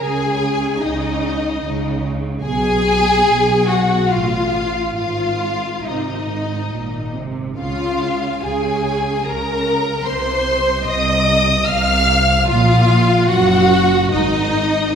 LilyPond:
<<
  \new Staff \with { instrumentName = "Violin section" } { \time 3/4 \key des \major \tempo 4 = 73 aes''4 ees''4. r8 | aes''4. ges''8 f''4 | f''4 ees''4. r8 | f''4 aes''4 bes''4 |
c'''4 ees'''4 f'''4 | f''4 ges''4 ees''4 | }
  \new Staff \with { instrumentName = "Viola section" } { \time 3/4 \key des \major aes'4 ees'4. r8 | aes'4. ges'8 f'4 | f'4 ees'4. r8 | f'4 aes'4 bes'4 |
c''4 ees''4 f''4 | f'4 ges'4 ees'4 | }
  \new Staff \with { instrumentName = "Violin section" } { \time 3/4 \key des \major aes'4 ees'4. r8 | aes'4. ges'8 f'4 | f'4 ees'4. r8 | f'4 aes'4 bes'4 |
c''4 ees''4 f''4 | f'4 ges'4 ees'4 | }
  \new Staff \with { instrumentName = "Cello section" } { \clef bass \time 3/4 \key des \major des4 des4 des4 | ces4 ces4 a,4 | aes,4 c8 aes,8 bes,8 c8 | des4 des4 des4 |
c4 c4 c4 | bes,4 ges,4 aes,4 | }
  \new Staff \with { instrumentName = "Double bass section" } { \clef bass \time 3/4 \key des \major des,4 des,4 des,4 | ces,4 ces,4 a,,4 | aes,,4 aes,,4 aes,,4 | des,4 des,4 des,4 |
c,4 c,4 c,4 | bes,,4 ges,,4 aes,,4 | }
>>